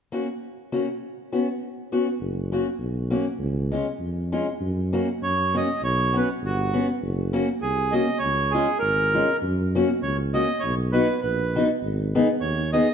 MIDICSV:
0, 0, Header, 1, 4, 480
1, 0, Start_track
1, 0, Key_signature, 6, "major"
1, 0, Tempo, 600000
1, 812, Time_signature, 2, 2, 24, 8
1, 10351, End_track
2, 0, Start_track
2, 0, Title_t, "Accordion"
2, 0, Program_c, 0, 21
2, 4184, Note_on_c, 0, 73, 85
2, 4446, Note_off_c, 0, 73, 0
2, 4456, Note_on_c, 0, 75, 76
2, 4655, Note_off_c, 0, 75, 0
2, 4673, Note_on_c, 0, 73, 84
2, 4930, Note_off_c, 0, 73, 0
2, 4934, Note_on_c, 0, 71, 72
2, 5030, Note_off_c, 0, 71, 0
2, 5163, Note_on_c, 0, 66, 67
2, 5491, Note_off_c, 0, 66, 0
2, 6094, Note_on_c, 0, 68, 77
2, 6334, Note_on_c, 0, 75, 77
2, 6354, Note_off_c, 0, 68, 0
2, 6546, Note_off_c, 0, 75, 0
2, 6550, Note_on_c, 0, 73, 88
2, 6808, Note_on_c, 0, 68, 73
2, 6823, Note_off_c, 0, 73, 0
2, 7024, Note_off_c, 0, 68, 0
2, 7033, Note_on_c, 0, 70, 77
2, 7493, Note_off_c, 0, 70, 0
2, 8022, Note_on_c, 0, 73, 79
2, 8137, Note_off_c, 0, 73, 0
2, 8273, Note_on_c, 0, 75, 85
2, 8478, Note_on_c, 0, 73, 76
2, 8504, Note_off_c, 0, 75, 0
2, 8598, Note_off_c, 0, 73, 0
2, 8739, Note_on_c, 0, 71, 68
2, 8961, Note_off_c, 0, 71, 0
2, 8973, Note_on_c, 0, 71, 65
2, 9315, Note_off_c, 0, 71, 0
2, 9927, Note_on_c, 0, 73, 82
2, 10165, Note_off_c, 0, 73, 0
2, 10182, Note_on_c, 0, 75, 90
2, 10351, Note_off_c, 0, 75, 0
2, 10351, End_track
3, 0, Start_track
3, 0, Title_t, "Steel-string acoustic guitar"
3, 0, Program_c, 1, 25
3, 96, Note_on_c, 1, 58, 51
3, 98, Note_on_c, 1, 61, 47
3, 106, Note_on_c, 1, 66, 55
3, 201, Note_off_c, 1, 58, 0
3, 203, Note_off_c, 1, 61, 0
3, 204, Note_off_c, 1, 66, 0
3, 578, Note_on_c, 1, 58, 45
3, 579, Note_on_c, 1, 61, 47
3, 579, Note_on_c, 1, 66, 52
3, 682, Note_off_c, 1, 66, 0
3, 684, Note_off_c, 1, 58, 0
3, 684, Note_off_c, 1, 61, 0
3, 1060, Note_on_c, 1, 61, 47
3, 1062, Note_on_c, 1, 66, 61
3, 1064, Note_on_c, 1, 59, 52
3, 1166, Note_off_c, 1, 61, 0
3, 1166, Note_off_c, 1, 66, 0
3, 1168, Note_off_c, 1, 59, 0
3, 1537, Note_on_c, 1, 59, 47
3, 1538, Note_on_c, 1, 61, 46
3, 1540, Note_on_c, 1, 66, 61
3, 1644, Note_off_c, 1, 59, 0
3, 1644, Note_off_c, 1, 61, 0
3, 1645, Note_off_c, 1, 66, 0
3, 2015, Note_on_c, 1, 61, 48
3, 2019, Note_on_c, 1, 58, 54
3, 2023, Note_on_c, 1, 66, 62
3, 2121, Note_off_c, 1, 61, 0
3, 2123, Note_off_c, 1, 58, 0
3, 2124, Note_off_c, 1, 66, 0
3, 2483, Note_on_c, 1, 58, 60
3, 2491, Note_on_c, 1, 61, 58
3, 2492, Note_on_c, 1, 66, 66
3, 2593, Note_off_c, 1, 58, 0
3, 2597, Note_off_c, 1, 66, 0
3, 2598, Note_off_c, 1, 61, 0
3, 2973, Note_on_c, 1, 56, 55
3, 2984, Note_on_c, 1, 61, 50
3, 2985, Note_on_c, 1, 65, 59
3, 3079, Note_off_c, 1, 56, 0
3, 3084, Note_off_c, 1, 65, 0
3, 3085, Note_off_c, 1, 61, 0
3, 3458, Note_on_c, 1, 61, 61
3, 3459, Note_on_c, 1, 56, 65
3, 3461, Note_on_c, 1, 65, 70
3, 3565, Note_off_c, 1, 61, 0
3, 3566, Note_off_c, 1, 56, 0
3, 3566, Note_off_c, 1, 65, 0
3, 3942, Note_on_c, 1, 61, 57
3, 3945, Note_on_c, 1, 66, 64
3, 3948, Note_on_c, 1, 58, 68
3, 4050, Note_off_c, 1, 61, 0
3, 4050, Note_off_c, 1, 66, 0
3, 4052, Note_off_c, 1, 58, 0
3, 4433, Note_on_c, 1, 58, 48
3, 4437, Note_on_c, 1, 61, 56
3, 4437, Note_on_c, 1, 66, 55
3, 4535, Note_off_c, 1, 58, 0
3, 4537, Note_off_c, 1, 61, 0
3, 4537, Note_off_c, 1, 66, 0
3, 4904, Note_on_c, 1, 59, 52
3, 4909, Note_on_c, 1, 66, 60
3, 4913, Note_on_c, 1, 61, 57
3, 5010, Note_off_c, 1, 59, 0
3, 5012, Note_off_c, 1, 66, 0
3, 5015, Note_off_c, 1, 61, 0
3, 5387, Note_on_c, 1, 59, 56
3, 5391, Note_on_c, 1, 61, 48
3, 5394, Note_on_c, 1, 66, 61
3, 5491, Note_off_c, 1, 59, 0
3, 5492, Note_off_c, 1, 61, 0
3, 5492, Note_off_c, 1, 66, 0
3, 5864, Note_on_c, 1, 61, 67
3, 5866, Note_on_c, 1, 58, 71
3, 5868, Note_on_c, 1, 66, 73
3, 5966, Note_off_c, 1, 61, 0
3, 5968, Note_off_c, 1, 58, 0
3, 5968, Note_off_c, 1, 66, 0
3, 6343, Note_on_c, 1, 58, 57
3, 6347, Note_on_c, 1, 61, 44
3, 6348, Note_on_c, 1, 66, 63
3, 6444, Note_off_c, 1, 58, 0
3, 6446, Note_off_c, 1, 61, 0
3, 6446, Note_off_c, 1, 66, 0
3, 6833, Note_on_c, 1, 56, 56
3, 6835, Note_on_c, 1, 61, 57
3, 6836, Note_on_c, 1, 65, 63
3, 6930, Note_off_c, 1, 56, 0
3, 6930, Note_off_c, 1, 61, 0
3, 6930, Note_off_c, 1, 65, 0
3, 7316, Note_on_c, 1, 56, 58
3, 7316, Note_on_c, 1, 65, 63
3, 7325, Note_on_c, 1, 61, 44
3, 7413, Note_off_c, 1, 56, 0
3, 7413, Note_off_c, 1, 65, 0
3, 7417, Note_off_c, 1, 61, 0
3, 7801, Note_on_c, 1, 61, 65
3, 7806, Note_on_c, 1, 58, 65
3, 7808, Note_on_c, 1, 66, 67
3, 7898, Note_off_c, 1, 61, 0
3, 7900, Note_off_c, 1, 66, 0
3, 7901, Note_off_c, 1, 58, 0
3, 8270, Note_on_c, 1, 58, 57
3, 8271, Note_on_c, 1, 66, 69
3, 8273, Note_on_c, 1, 61, 51
3, 8373, Note_off_c, 1, 66, 0
3, 8374, Note_off_c, 1, 58, 0
3, 8375, Note_off_c, 1, 61, 0
3, 8741, Note_on_c, 1, 63, 50
3, 8744, Note_on_c, 1, 59, 53
3, 8748, Note_on_c, 1, 66, 65
3, 8848, Note_off_c, 1, 63, 0
3, 8850, Note_off_c, 1, 59, 0
3, 8850, Note_off_c, 1, 66, 0
3, 9244, Note_on_c, 1, 59, 58
3, 9249, Note_on_c, 1, 63, 56
3, 9250, Note_on_c, 1, 66, 63
3, 9338, Note_off_c, 1, 59, 0
3, 9340, Note_off_c, 1, 66, 0
3, 9341, Note_off_c, 1, 63, 0
3, 9720, Note_on_c, 1, 59, 65
3, 9725, Note_on_c, 1, 63, 57
3, 9725, Note_on_c, 1, 68, 77
3, 9814, Note_off_c, 1, 59, 0
3, 9815, Note_off_c, 1, 68, 0
3, 9817, Note_off_c, 1, 63, 0
3, 10186, Note_on_c, 1, 59, 56
3, 10190, Note_on_c, 1, 63, 52
3, 10195, Note_on_c, 1, 68, 61
3, 10285, Note_off_c, 1, 59, 0
3, 10287, Note_off_c, 1, 63, 0
3, 10290, Note_off_c, 1, 68, 0
3, 10351, End_track
4, 0, Start_track
4, 0, Title_t, "Tuba"
4, 0, Program_c, 2, 58
4, 1762, Note_on_c, 2, 30, 72
4, 2075, Note_off_c, 2, 30, 0
4, 2233, Note_on_c, 2, 35, 69
4, 2548, Note_off_c, 2, 35, 0
4, 2706, Note_on_c, 2, 37, 85
4, 3026, Note_off_c, 2, 37, 0
4, 3196, Note_on_c, 2, 41, 62
4, 3517, Note_off_c, 2, 41, 0
4, 3684, Note_on_c, 2, 42, 77
4, 4002, Note_off_c, 2, 42, 0
4, 4176, Note_on_c, 2, 42, 63
4, 4490, Note_off_c, 2, 42, 0
4, 4654, Note_on_c, 2, 35, 79
4, 4967, Note_off_c, 2, 35, 0
4, 5134, Note_on_c, 2, 31, 73
4, 5446, Note_off_c, 2, 31, 0
4, 5612, Note_on_c, 2, 30, 83
4, 5923, Note_off_c, 2, 30, 0
4, 6095, Note_on_c, 2, 36, 62
4, 6404, Note_off_c, 2, 36, 0
4, 6573, Note_on_c, 2, 37, 70
4, 6883, Note_off_c, 2, 37, 0
4, 7053, Note_on_c, 2, 32, 71
4, 7366, Note_off_c, 2, 32, 0
4, 7537, Note_on_c, 2, 42, 77
4, 7851, Note_off_c, 2, 42, 0
4, 8019, Note_on_c, 2, 37, 71
4, 8331, Note_off_c, 2, 37, 0
4, 8508, Note_on_c, 2, 35, 77
4, 8816, Note_off_c, 2, 35, 0
4, 8985, Note_on_c, 2, 34, 69
4, 9292, Note_off_c, 2, 34, 0
4, 9457, Note_on_c, 2, 32, 84
4, 9765, Note_off_c, 2, 32, 0
4, 9933, Note_on_c, 2, 39, 71
4, 10242, Note_off_c, 2, 39, 0
4, 10351, End_track
0, 0, End_of_file